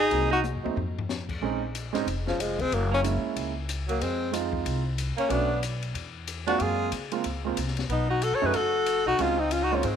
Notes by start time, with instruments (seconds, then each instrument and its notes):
0.00 alto saxophone D#4, tenor saxophone G#4
0.10 upright bass C2, grand piano F#3 A#3 C4 D#4, ride
0.31 alto saxophone D#4, tenor saxophone F#4
0.44 hi-hat pedal, high tom
0.55 upright bass F#2
0.63 upright bass D#2, grand piano F#3 A3 C4 D#4, high tom
0.76 upright bass F2, floor tom
0.99 floor tom
1.09 snare, hi-hat pedal
1.29 kick, crash
1.41 upright bass A#1, grand piano G#3 C4 C#4 D#4
1.75 hi-hat pedal, ride
1.93 upright bass G#1, grand piano G#3 C4 C#4 D#4, snare, ride
2.06 upright bass F1, ride
2.27 alto saxophone C#3, tenor saxophone F3, snare
2.38 upright bass F1, alto saxophone F3, tenor saxophone G#3, hi-hat pedal, ride
2.59 alto saxophone G#3, tenor saxophone C4, kick, ride
2.71 upright bass F#1, alto saxophone F#3, tenor saxophone A#3, ride
2.92 alto saxophone A#3, tenor saxophone C#4
3.03 grand piano G#3 A#3 C#4 E4, hi-hat pedal, ride
3.23 muted upright bass stroke
3.36 upright bass C#2, ride
3.69 hi-hat pedal, ride
3.88 alto saxophone F#3, tenor saxophone A#3, ride
4.01 upright bass F2, alto saxophone G#3, tenor saxophone C4, ride
4.32 grand piano G#3 C4 D#4 F4, hi-hat pedal, ride
4.53 kick
4.65 upright bass C2, ride
4.98 hi-hat pedal, ride
5.17 alto saxophone A#3, tenor saxophone C#4, muted upright bass stroke, ride
5.29 upright bass B1, grand piano A3 C#4 D4 F#4, alto saxophone B3, tenor saxophone D4, ride
5.63 hi-hat pedal, ride
5.83 ride
5.94 upright bass E2, ride
6.28 hi-hat pedal, ride
6.47 grand piano G#3 A#3 C4 F4, alto saxophone D4, tenor saxophone F#4, ride
6.59 upright bass F#2, alto saxophone F4, tenor saxophone G#4, ride
6.92 upright bass C#3, hi-hat pedal, ride
7.12 grand piano G#3 A#3 C4 F4, ride
7.24 upright bass C#2, ride
7.45 grand piano G#3 A#3 C4 F4
7.57 upright bass C2, hi-hat pedal, ride
7.68 snare
7.77 snare, ride
7.89 upright bass B1, alto saxophone B3, tenor saxophone D#4, ride
8.09 alto saxophone D#4, tenor saxophone F#4
8.22 alto saxophone F#4, tenor saxophone A4, hi-hat pedal, ride
8.32 upright bass D#2, alto saxophone A4, tenor saxophone C#5
8.41 upright bass F#2, grand piano A3 C#4 D#4 F#4, alto saxophone G#4
8.46 tenor saxophone B4
8.54 upright bass F#1, alto saxophone F#4, tenor saxophone A4, ride
8.86 hi-hat pedal, ride
9.05 upright bass B1, alto saxophone D#4, tenor saxophone F#4
9.18 upright bass C#2, grand piano G#3 C4 D#4 F4, alto saxophone C#4, tenor saxophone F4, ride
9.38 alto saxophone C4, tenor saxophone D#4
9.51 alto saxophone C#4, tenor saxophone F4, hi-hat pedal, ride
9.63 alto saxophone D#4, tenor saxophone F#4
9.72 grand piano G#3 C4 D#4 F4, alto saxophone A#3, tenor saxophone C#4
9.83 upright bass G#2, alto saxophone G#3, tenor saxophone C4, ride